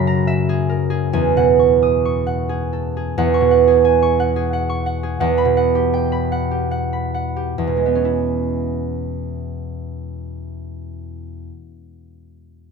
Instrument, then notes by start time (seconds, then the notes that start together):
harp
Already playing: F#2 C#3 E5 G#5 B5 C#6
0.07 A#5
0.27 E5
0.49 G#4
0.69 A#4
0.90 G#4
1.13 E2 G#5
1.37 B2 F#5
1.59 C#6
1.83 D#6
2.05 C#6
2.27 F#5
2.49 G#4
2.73 A4
2.97 G#4
3.18 E2 F#5
3.34 C#6
3.41 B2
3.51 F#5
3.67 G#4
3.85 G#5
4.02 C#6
4.20 F#5
4.36 G#4
4.53 F#5
4.69 C#6
4.86 F#5
5.03 G#4
5.20 E2 F#5
5.38 B5
5.45 B2
5.57 F#5
5.75 G4
5.94 G5
6.12 B5
6.32 F#5
6.51 G4
6.71 F#5
6.93 B5
7.14 F#5
7.36 G4
7.58 E2
7.67 B2
7.77 G#3
7.86 B3
7.95 C#4
8.05 E4